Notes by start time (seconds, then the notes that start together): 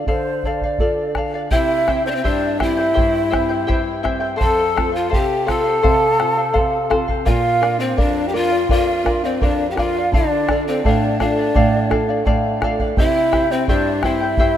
0.07 D3 A4 C5 D5 F5, bombo low
0.43 A4 D5 F5, bombo low
0.61 F5, bombo low
0.65 D5
0.79 D4 F4 A4 D5 F5, bombo low
1.15 A4 D5 F5, bombo rim, bombo low
1.34 D5 F5
1.51 C3 E4 G4 C5 E5 G5, bombo low
1.88 C4 E4 G4 C5 E5 G5, bombo rim, bombo low
2.06 C4 E4 C5 D5 G5
2.11 D4
2.15 C4 C5
2.24 G2 D4 E4 G4 C5 D5 E5 G5, bombo low
2.58 C4 E4 G4 C5 E5 G5, bombo rim, bombo low
2.77 E4 C5 G5
2.94 G2 E4 G4 C5 E5 G5, bombo low
3.30 C4 E4 G4 C5 E5 G5, bombo rim, bombo low
3.49 E4 C5 G5
3.67 G2 E4 G4 C5 E5 G5, bombo low
4.03 C4 E4 G4 C5 E5 G5, bombo rim, bombo low
4.20 E4 C5 G5
4.36 A4 C5 F5 A5
4.41 F2 A4, bombo low
4.75 C4 F4 A4 C5 F5, bombo rim, bombo low
4.92 F4 C5 F5
5.10 C3 G4 A4 C5 F5 G5, bombo low
5.46 C4 F4 A4 C5 F5 A5, bombo rim, bombo low
5.64 C5 F5
5.82 C3 A4 C5 F5, bombo low
6.18 C4 F4 A4 C5 F5, bombo rim
6.37 C5 F5
6.53 C3 A4 C5 F5, bombo low
6.90 C4 F4 A4 C5 F5, bombo rim, bombo low
7.08 C5 F5, bombo low
7.25 A#2 F4 A#4 D5 F5, bombo low
7.61 D4 F4 A#4 D5 F5, bombo rim
7.79 C4 C5 D5 F5
7.97 F2 D4 A#4 D5 F5, bombo low
8.27 G4 G5
8.33 D4 F4 A#4 D5 F5
8.51 D5 F5
8.69 F2 F4 A#4 D5 F5, bombo low
9.04 D4 F4 A#4 D5 F5, bombo rim, bombo low
9.24 C4 C5 D5 F5
9.41 F2 D4 A#4 D5 F5, bombo low
9.71 G4 G5
9.75 D4 F4 A#4 D5 F5, bombo rim, bombo low
9.97 D5 F5
10.12 D3 D4 A4 D5 F5, bombo low
10.48 D4 F4 A4 D5 F5, bombo rim, bombo low
10.68 C4 C5 D5 F5
10.84 A2 D4 A4 D5 F5, bombo low
11.20 D4 F4 A4 D5 F5, bombo rim, bombo low
11.38 D5 F5
11.54 A2 A4 D5 F5, bombo low
11.89 D4 F4 A4 D5 F5, bombo rim, bombo low
12.09 D5 F5
12.25 A2 A4 D5 F5, bombo low
12.60 D4 F4 A4 D5 F5, bombo rim, bombo low
12.79 D5 F5, bombo low
12.97 C3 E4 G4 C5 E5 G5, bombo low
13.31 C4 E4 G4 C5 E5 G5, bombo rim, bombo low
13.51 C4 E4 C5 G5
13.68 G2 D4 E4 G4 C5 D5 E5 G5, bombo low
14.02 C4 E4 G4 C5 E5 G5, bombo rim, bombo low
14.21 E4 C5 G5
14.37 G2 E4 G4 C5 E5 G5, bombo low